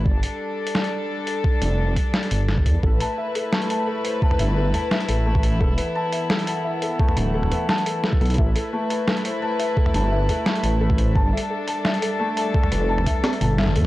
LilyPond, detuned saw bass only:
\new Staff \with { instrumentName = "Detuned saw bass" } { \clef bass \time 4/4 \key g \mixolydian \tempo 4 = 173 g,,8 r2. r8 | r8 f,,4 r4 g,,4 e,16 r16 | a,,8 r2. r8 | r8 g,,4 r4 a,,4. |
e,,8 r2. r8 | r8 d,,4 r2 b,,8 | a,,8 r2. r8 | r8 g,,4 r4 a,,4. |
g,,8 r2. r8 | r8 f,,4 r4 g,,4 e,8 | }